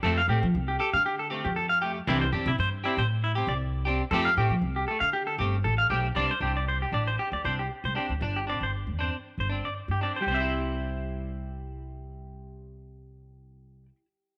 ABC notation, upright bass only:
X:1
M:4/4
L:1/16
Q:"Swing 16ths" 1/4=117
K:C
V:1 name="Upright bass" clef=bass
F,,2 A,, F, C,,2 z D,4 F,,4- F,, | C,,2 E,, C, G,,2 z A,,4 C,,4- C,, | F,,2 A,, F, C,,2 z D,3 G,,,2 A,,,2 B,,,2 | C,, z C,,4 A,,,2 z D,, C,,2 z C,, z D,, |
G,,,3 G,,,2 E,,2 z2 G,,,2 z2 G,,2 z | C,,16- | C,,16 |]